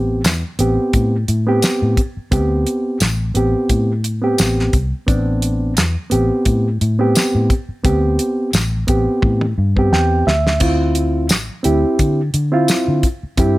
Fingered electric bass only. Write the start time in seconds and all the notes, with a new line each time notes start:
Already playing: A1
0.24 E2
0.59 A1
0.94 A2
1.29 A2
1.82 A2
2.17 muted fingered electric bass stroke
2.32 D2
3.01 A1
3.35 A1
3.70 A2
4.40 A1
4.74 C2
5.08 A1
5.77 E2
6.12 A1
6.46 A2
6.81 A2
7.35 A2
7.69 muted fingered electric bass stroke
7.85 D2
8.54 A1
8.88 A1
9.23 A2
9.58 G2
9.92 E2
10.27 D2
10.61 D2
11.30 A1
11.65 D2
11.99 D3
12.34 D3
12.88 D3
13.23 muted fingered electric bass stroke
13.38 G2